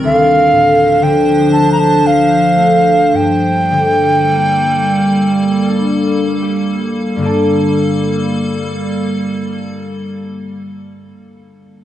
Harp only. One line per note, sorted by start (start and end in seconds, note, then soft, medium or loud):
0.03 3.19 D2 medium
0.52 1.06 A2 medium
1.02 3.19 D3 medium
1.50 2.56 A3 medium
2.02 3.19 F3 soft
2.56 4.39 A3 medium
3.12 7.02 G2 medium
3.71 7.16 D3 soft
4.33 7.20 A#3 soft
4.98 6.42 G4 soft
5.68 8.48 D4 soft
6.42 7.21 G4 soft
7.16 11.06 G2 soft
7.16 11.08 D3 soft
7.20 10.74 A#3 soft
7.20 10.76 G4 soft
7.24 10.79 D5 soft
7.24 10.80 A5 soft